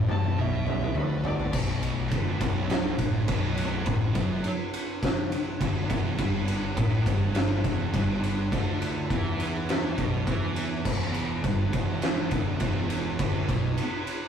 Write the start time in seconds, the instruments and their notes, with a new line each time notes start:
0.09 fingered electric bass E1, distorted electric guitar E2, lead electric guitar A5, high tom
0.23 mid tom
0.38 fingered electric bass B1, distorted electric guitar B2, lead electric guitar E5, mid tom
0.67 mid tom
0.81 mid tom
0.95 fingered electric bass D2, distorted electric guitar D3, mid tom
0.99 lead electric guitar B4
1.24 lead electric guitar D5, floor tom
1.39 floor tom
1.53 fingered electric bass B0, distorted electric guitar B1, kick, crash
1.83 ride
2.11 fingered electric bass D1, distorted electric guitar D2, kick, ride
2.41 fingered electric bass B0, distorted electric guitar B1, kick, ride
2.70 snare, ride
2.98 fingered electric bass A1, distorted electric guitar A2, kick, ride
3.28 fingered electric bass B0, distorted electric guitar B1, kick, ride
3.57 snare, ride
3.86 fingered electric bass A1, distorted electric guitar A2, kick, ride
4.15 fingered electric bass F#1, distorted electric guitar F#2, kick, ride
4.44 ride
4.74 ride
5.03 kick, snare, ride
5.32 ride
5.60 fingered electric bass D1, distorted electric guitar D2, kick, ride
5.89 fingered electric bass E1, distorted electric guitar E2, kick, snare, ride
6.18 fingered electric bass G1, distorted electric guitar G2, kick, ride
6.48 ride
6.77 fingered electric bass A1, distorted electric guitar A2, kick, ride
7.06 fingered electric bass G1, distorted electric guitar G2, kick, ride
7.35 snare, ride
7.64 fingered electric bass E1, distorted electric guitar E2, kick, ride
7.94 fingered electric bass G1, distorted electric guitar G2, kick, ride
8.24 ride
8.52 fingered electric bass D2, distorted electric guitar D3, kick, ride
8.82 ride
9.10 fingered electric bass E2, distorted electric guitar E3, kick, ride
9.40 ride
9.69 snare, ride
9.98 fingered electric bass B1, distorted electric guitar B2, kick, ride
10.27 fingered electric bass E2, distorted electric guitar E3, kick, ride
10.56 ride
10.85 fingered electric bass E1, distorted electric guitar E2, kick, crash
11.14 ride
11.44 fingered electric bass G1, distorted electric guitar G2, kick, ride
11.73 fingered electric bass E1, distorted electric guitar E2, kick, ride
12.02 snare, ride
12.31 fingered electric bass D1, distorted electric guitar D2, kick, ride
12.60 fingered electric bass E1, distorted electric guitar E2, kick, ride
12.90 snare, ride
13.19 fingered electric bass D1, distorted electric guitar D2, kick, ride
13.48 fingered electric bass B1, distorted electric guitar B2, kick, ride
13.78 ride
14.07 ride